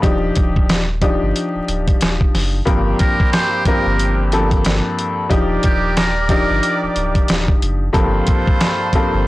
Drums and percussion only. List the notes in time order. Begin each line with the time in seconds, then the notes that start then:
0.03 kick, closed hi-hat
0.35 kick, closed hi-hat
0.56 kick
0.69 snare, closed hi-hat
1.02 kick, closed hi-hat
1.36 closed hi-hat
1.68 closed hi-hat
1.88 kick, closed hi-hat
2.01 snare, closed hi-hat
2.21 kick
2.35 snare, open hi-hat
2.67 kick, closed hi-hat
2.99 kick, closed hi-hat
3.20 kick
3.33 snare, closed hi-hat
3.65 kick, closed hi-hat
3.99 closed hi-hat
4.32 closed hi-hat
4.51 kick, closed hi-hat
4.65 snare, closed hi-hat
4.99 closed hi-hat
5.31 kick, closed hi-hat
5.63 kick, closed hi-hat
5.97 snare, closed hi-hat
6.29 kick, closed hi-hat
6.63 closed hi-hat
6.96 closed hi-hat
7.15 kick, closed hi-hat
7.28 snare, closed hi-hat
7.48 kick
7.62 closed hi-hat
7.94 kick, closed hi-hat
8.27 kick, closed hi-hat
8.47 kick
8.61 snare, closed hi-hat
8.93 kick, closed hi-hat